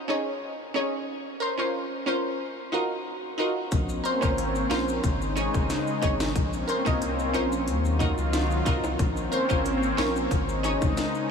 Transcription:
0.08 0.23 C#4 medium
0.08 0.23 D#4 medium
0.08 0.23 G#4 medium
0.08 0.24 C#5 loud
0.74 0.89 C#4 medium
0.74 0.89 D#4 medium
0.74 0.89 G#4 medium
0.74 0.90 C#5 medium
1.40 1.48 A#4 medium
1.40 1.49 C5 loud
1.58 1.70 C#4 medium
1.58 1.71 F4 medium
1.58 1.71 A#4 medium
1.58 1.71 C5 medium
2.06 2.21 C#4 medium
2.06 2.21 F4 medium
2.06 2.21 A#4 medium
2.06 2.22 C5 loud
2.72 2.86 D#4 medium
2.72 2.87 F4 medium
2.72 2.87 F#4 medium
2.72 2.87 A#4 loud
3.38 3.52 D#4 medium
3.38 3.53 F4 medium
3.38 3.53 F#4 medium
3.38 3.53 A#4 loud
3.72 4.01 A#1 loud
3.72 5.03 A#3 medium
3.72 5.02 C4 medium
3.72 5.02 C#4 medium
3.72 kick loud
3.72 closed hi-hat loud
3.72 maracas medium
3.89 maracas medium
4.04 4.11 A#4 medium
4.04 4.12 C5 loud
4.04 closed hi-hat soft
4.04 maracas medium
4.21 4.65 G#1 medium
4.21 4.34 C#4 medium
4.21 4.34 F4 medium
4.21 4.35 A#4 medium
4.21 4.35 C5 medium
4.21 kick medium
4.21 maracas medium
4.38 closed hi-hat medium
4.38 maracas medium
4.55 maracas soft
4.70 5.00 A#1 medium
4.70 4.84 C#4 medium
4.70 4.84 F4 medium
4.70 4.85 A#4 medium
4.70 4.85 C5 loud
4.70 snare loud
4.70 closed hi-hat medium
4.88 maracas medium
5.04 5.48 G#1 loud
5.04 6.34 C#3 medium
5.04 6.34 G#3 medium
5.04 6.34 D#4 medium
5.04 kick loud
5.04 closed hi-hat medium
5.04 maracas medium
5.22 maracas medium
5.36 5.50 C#4 medium
5.36 5.50 D#4 medium
5.36 5.51 G#4 medium
5.36 5.51 C#5 loud
5.36 closed hi-hat medium
5.36 maracas medium
5.54 5.68 G#1 loud
5.54 kick medium
5.54 maracas medium
5.70 snare medium
5.70 closed hi-hat medium
5.70 maracas medium
5.87 maracas medium
6.02 6.32 G#1 medium
6.02 6.16 C#4 medium
6.02 6.16 D#4 medium
6.02 6.17 G#4 medium
6.02 6.17 C#5 loud
6.02 kick loud
6.02 closed hi-hat medium
6.02 maracas medium
6.20 snare loud
6.20 maracas medium
6.36 6.65 A#1 loud
6.36 7.66 A#3 medium
6.36 7.66 C4 medium
6.36 7.66 C#4 medium
6.36 kick loud
6.36 closed hi-hat medium
6.36 maracas medium
6.53 maracas medium
6.68 6.75 A#4 medium
6.68 6.76 C5 loud
6.68 closed hi-hat soft
6.68 maracas medium
6.85 7.36 C2 medium
6.85 6.98 C#4 medium
6.85 6.98 F4 medium
6.85 6.98 A#4 medium
6.85 6.99 D#5 medium
6.85 kick loud
6.85 maracas medium
7.02 closed hi-hat medium
7.02 maracas medium
7.19 maracas medium
7.33 7.69 A#1 medium
7.33 7.48 C#4 medium
7.33 7.48 F4 medium
7.33 7.49 A#4 medium
7.33 7.49 C5 loud
7.33 closed hi-hat medium
7.52 maracas medium
7.67 8.12 D#2 loud
7.67 8.98 D#3 medium
7.67 8.98 F#3 medium
7.67 8.98 F4 medium
7.67 closed hi-hat medium
7.67 maracas medium
7.85 maracas medium
7.99 8.14 D#4 medium
7.99 8.14 F4 medium
7.99 8.14 F#4 medium
7.99 8.15 A#4 loud
7.99 kick medium
7.99 closed hi-hat medium
7.99 maracas medium
8.18 8.61 C#2 loud
8.18 maracas medium
8.33 snare loud
8.33 closed hi-hat medium
8.33 maracas medium
8.51 maracas soft
8.65 8.96 C2 medium
8.65 8.80 D#4 medium
8.65 8.80 F4 medium
8.65 8.80 F#4 medium
8.65 8.81 A#4 loud
8.65 kick loud
8.65 closed hi-hat medium
8.65 maracas medium
8.84 high timbale medium
8.84 maracas medium
8.99 9.29 A#1 loud
8.99 10.30 A#3 medium
8.99 10.30 C4 medium
8.99 10.30 C#4 medium
8.99 kick loud
8.99 closed hi-hat medium
8.99 maracas medium
9.17 maracas medium
9.32 9.39 A#4 medium
9.32 9.40 C5 loud
9.32 closed hi-hat soft
9.32 maracas medium
9.49 9.93 G#1 medium
9.49 9.62 C#4 medium
9.49 9.62 F4 medium
9.49 9.62 A#4 medium
9.49 9.63 C5 medium
9.49 kick medium
9.49 maracas medium
9.65 closed hi-hat medium
9.65 maracas medium
9.83 maracas soft
9.97 10.27 A#1 medium
9.97 10.12 C#4 medium
9.97 10.12 F4 medium
9.97 10.12 A#4 medium
9.97 10.13 C#5 loud
9.97 snare loud
9.97 closed hi-hat medium
10.16 maracas medium
10.31 10.76 G#1 loud
10.31 11.31 C#3 medium
10.31 11.31 G#3 medium
10.31 11.31 D#4 medium
10.31 kick loud
10.31 closed hi-hat medium
10.31 maracas medium
10.49 maracas medium
10.63 10.78 C#4 medium
10.63 10.78 D#4 medium
10.63 10.78 G#4 medium
10.63 10.79 C#5 loud
10.63 closed hi-hat medium
10.63 maracas medium
10.82 10.96 G#1 loud
10.82 kick loud
10.82 maracas medium
10.97 snare medium
10.97 closed hi-hat medium
10.97 maracas medium
11.15 maracas soft

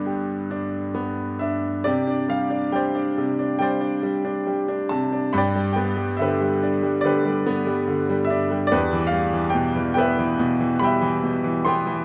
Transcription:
0.00 1.82 G2 medium
0.00 0.46 D3 soft
0.00 0.92 B3 medium
0.00 0.49 D4 soft
0.00 0.92 D5 medium
0.00 0.91 G5 medium
0.06 1.82 G4 soft
0.51 1.40 D4 soft
0.95 1.83 B3 soft
1.39 1.85 D4 soft
1.39 1.86 E5 medium
1.84 3.16 C3 medium
1.84 3.58 G4 soft
1.84 2.31 D5 medium
2.07 2.49 D4 soft
2.28 2.71 G3 soft
2.28 2.75 F5 medium
2.50 2.93 D4 soft
2.72 3.58 G3 soft
2.72 3.61 C5 soft
2.72 3.60 D5 soft
2.72 3.57 G5 medium
2.95 3.37 D4 soft
3.18 4.88 C3 soft
3.39 3.79 D4 soft
3.59 4.01 G3 soft
3.59 5.31 C5 soft
3.59 5.31 D5 soft
3.59 4.94 G5 medium
3.81 4.23 D4 soft
4.03 4.45 G3 soft
4.25 4.67 D4 soft
4.47 5.31 G3 soft
4.68 5.11 D4 soft
4.89 5.33 C3 soft
4.89 5.35 A5 medium
5.12 5.34 D4 soft
5.33 8.67 G2 medium
5.33 5.78 B5 medium
5.38 7.00 D5 medium
5.38 5.71 G5 medium
5.55 5.95 G3 soft
5.73 7.42 B3 soft
5.73 6.15 G5 medium
5.96 6.39 G3 soft
6.17 7.03 D3 soft
6.17 7.06 E5 medium
6.22 7.04 G4 soft
6.22 7.04 B4 soft
6.41 6.81 G3 soft
6.63 8.26 D4 soft
6.83 7.24 G3 soft
7.01 7.86 D3 medium
7.01 8.24 D5 medium
7.06 8.68 G4 medium
7.06 8.68 B4 medium
7.25 7.65 G3 soft
7.46 8.68 B3 medium
7.67 8.08 G3 medium
7.88 8.69 D3 soft
8.09 8.49 G3 medium
8.25 8.70 E5 medium
8.30 8.70 D4 soft
8.51 8.71 G3 soft
8.67 9.12 D5 medium
8.71 12.05 E2 medium
8.71 10.35 G4 medium
8.71 9.97 B4 medium
8.93 9.32 E3 medium
9.07 9.53 F5 medium
9.12 10.77 G3 soft
9.33 9.74 E3 soft
9.50 9.93 G5 medium
9.54 10.38 B2 medium
9.76 10.17 E3 soft
9.94 11.63 B3 soft
9.94 10.76 G5 medium
9.98 11.64 B4 medium
9.98 10.83 E5 medium
10.19 10.59 E3 medium
10.39 11.22 B2 medium
10.60 11.00 E3 medium
10.79 12.05 G3 medium
10.79 11.66 G5 medium
10.79 11.62 B5 loud
10.84 12.05 E5 medium
11.02 11.43 E3 medium
11.24 12.05 B2 soft
11.44 11.85 E3 medium
11.65 12.05 B3 medium
11.65 12.05 G5 medium
11.65 12.05 C6 medium
11.87 12.05 E3 medium

